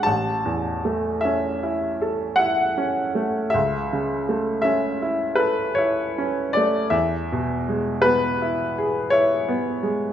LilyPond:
<<
  \new Staff \with { instrumentName = "Grand piano" } { \time 9/8 \key a \major \tempo 4. = 53 a''4. e''4. fis''4. | e''4. e''4 b'8 cis''4 d''8 | e''4. b'4. cis''4. | }
  \new Staff \with { instrumentName = "Grand piano" } { \time 9/8 \key a \major a,,8 e,8 a8 cis'8 e'8 a'8 e'8 cis'8 a8 | cis,8 cis8 a8 cis'8 e'8 a'8 e'8 cis'8 a8 | e,8 b,8 gis8 b8 e'8 gis'8 e'8 b8 gis8 | }
>>